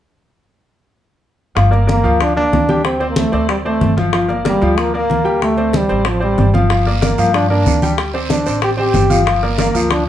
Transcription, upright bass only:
1.57 G1
2.05 D2
2.52 D2
3.33 D2
3.81 G1
4.62 D2
5.09 D2
5.90 A1
6.38 G1
7.18 G2
7.65 D2
8.46 A1
8.94 G1
9.74 D2

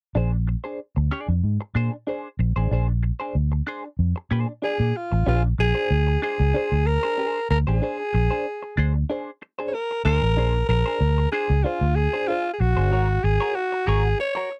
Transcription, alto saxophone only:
4.64 G#4
4.97 F4
5.28 F4
5.60 G#4
6.23 G#4
6.87 A#4
7.51 A#4
7.67 G#4
9.68 C#5
9.74 A#4
10.05 A#4
10.69 A#4
11.32 G#4
11.64 F4
11.96 G#4
12.28 F4
12.54 G#4
12.60 F#4
13.24 G#4
13.55 F#4
13.88 G#4
14.20 C#5

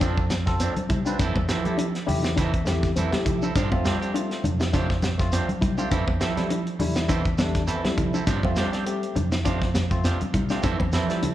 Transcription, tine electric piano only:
0.01 C4 F4 A4
0.46 C4 F4 A4
1.05 C4 F4 B4
1.64 A3 E4 G4
2.06 A3 E4 G4
2.65 A3 E4 G4
3.11 A3 E4 G4
3.70 A3 C4 F4
4.13 A3 C4 F4
4.72 A3 C4 F4
5.18 A3 C4 F4
5.77 A3 C4 F4
6.36 G3 A3 E4
6.80 G3 A3 E4
7.39 G3 A3 D4
7.85 G3 A3 E4
8.43 A3 C4 F4
8.86 A3 C4 G4
9.43 A3 C4 F4
9.90 A3 C4 F4
10.50 A3 C4 F4
11.08 G3 A3 E4

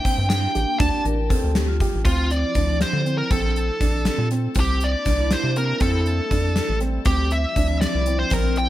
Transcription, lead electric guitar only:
Already playing: G5
0.29 G5
0.79 A5
2.05 F4
2.31 D5
2.82 C5
3.18 A#4
3.31 A4
4.60 G4
4.84 D5
5.33 C5
5.58 A#4
5.82 A4
7.06 G4
7.32 E5
7.81 D5
8.19 C5
8.33 A#4
8.58 G5

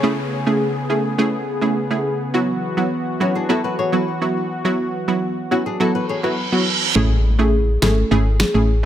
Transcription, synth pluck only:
0.03 A3 C#4 E4 G#4
0.46 A3 C#4 E4 G#4
0.90 A3 C#4 E4 G#4
1.18 A3 C#4 E4 G#4
1.61 A3 C#4 E4 G#4
1.90 A3 C#4 E4 G#4
2.34 F#3 B3 E4 F#4
2.77 F#3 B3 E4 F#4
3.20 F#3 B3 E4 F#4
3.49 F#3 B3 E4 F#4
3.92 F#3 B3 E4 F#4
4.21 F#3 B3 E4 F#4
4.65 F#3 B3 E4 F#4
5.08 F#3 B3 E4 F#4
5.51 F#3 B3 E4 F#4
5.80 F#3 B3 E4 F#4
6.23 F#3 B3 E4 F#4
6.52 F#3 B3 E4 F#4
6.95 A3 C#4 E4 G#4
7.39 A3 C#4 E4 G#4
7.82 A3 C#4 E4 G#4
8.11 A3 C#4 E4 G#4
8.54 A3 C#4 E4 G#4

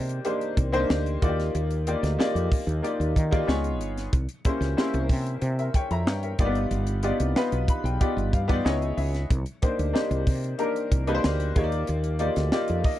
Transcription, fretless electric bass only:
Already playing: C3
0.57 C2
0.90 D2
1.22 D#2
1.55 D#2
2.03 D2
2.35 F2
2.67 D#2
3.00 D#2
3.16 D#3
3.48 C#2
3.81 G1
4.13 C2
4.61 C#2
4.94 C2
5.10 C3
5.42 C3
5.91 F2
6.07 G2
6.39 G1
6.71 G1
7.20 C2
7.52 B1
7.84 B1
8.17 G1
8.33 G2
8.65 C#2
8.97 C#2
9.31 C2
9.79 D2
10.11 C2
10.27 C3
10.92 C2
11.25 D2
11.56 D#2
11.89 D#2
12.37 D2
12.70 F2

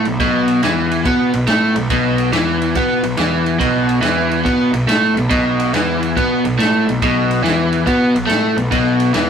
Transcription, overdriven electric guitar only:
0.06 B2
0.20 B2
0.63 E3
1.06 B3
1.34 B2
1.48 A3
1.76 B2
1.91 B2
2.33 E3
2.76 B3
3.04 B2
3.18 E3
3.60 B2
4.02 E3
4.45 B3
4.74 B2
4.88 A3
5.18 B2
5.30 B2
5.75 E3
6.16 B3
6.46 B2
6.59 A3
6.89 B2
7.03 B2
7.44 E3
7.86 B3
8.14 B2
8.26 A3
8.57 B2
8.72 B2
9.15 E3

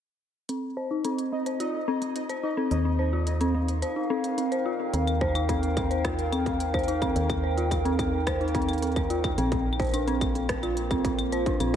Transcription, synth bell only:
0.49 C4
0.77 C5
0.91 D#4
1.05 C4
1.32 C4
1.46 C5
1.60 F4
1.88 C4
2.02 C4
2.29 C5
2.43 D#4
2.57 C4
2.85 C4
2.99 C5
3.13 F4
3.41 C4
3.54 C4
3.82 C5
3.96 D#4
4.10 C4
4.38 C4
4.52 C5
4.66 F4
4.93 C4
5.21 C5
5.35 D#4
5.49 C4
5.77 C4
5.91 C5
6.05 F4
6.32 C4
6.46 C4
6.74 C5
6.88 D#4
7.02 C4
7.30 C4
7.43 C5
7.57 F4
7.85 C4
8.27 C5
8.41 D#4
8.54 C4
8.82 C4
8.96 C5
9.10 F4
9.38 C4
9.52 C4
9.80 C5
9.93 D4
10.07 C4
10.35 C4
10.49 C5
10.63 F4
10.91 C4
11.05 C4
11.32 C5
11.46 D4
11.60 C4

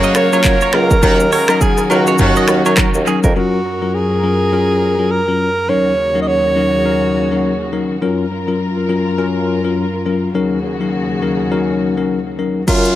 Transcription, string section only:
Already playing: A#3 A#4 F5
1.03 D#3 C#4 F#4
3.36 F#2 F#3 A#4
5.69 D#2 C#3 F#4
8.02 F#2 F4 A#4
10.35 D#2 C#3 F#4

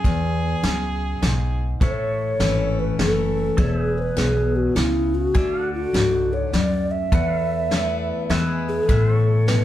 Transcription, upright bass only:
0.04 E2
0.63 C#2
1.22 B1
1.81 A1
2.40 G#1
2.99 F#1
3.58 E1
4.16 B1
4.75 C#2
5.35 D2
5.93 C#2
6.53 D2
7.12 E2
8.29 E2
8.89 A1

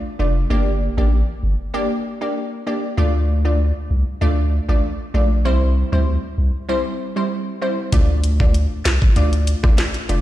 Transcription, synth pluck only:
0.19 A3 D4 F4 D5
0.50 A#3 D4 G4 D5
0.97 A#3 D4 G4 D5
1.74 A#3 D4 G4 D5
2.21 A#3 D4 G4 D5
2.67 A#3 D4 G4 D5
2.97 A3 D4 F4 D5
3.45 A3 D4 F4 D5
4.21 A3 D4 F4 D5
4.69 A3 D4 F4 D5
5.14 A3 D4 F4 D5
5.45 G3 C4 E4 C5
5.92 G3 C4 E4 C5
6.69 G3 C4 E4 C5
7.16 G3 C4 E4 C5
7.62 G3 C4 E4 C5
7.92 A3 D4 F4 D5
8.40 A3 D4 F4 D5
9.16 A3 D4 F4 D5
9.63 A3 D4 F4 D5
10.09 A3 D4 F4 D5

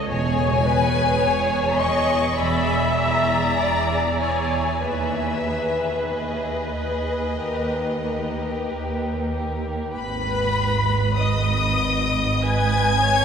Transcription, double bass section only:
0.10 E1
1.23 E1
2.36 E1
3.57 E1
4.82 D#2
6.12 D#2
7.40 D#2
8.69 D#2
9.95 G#1

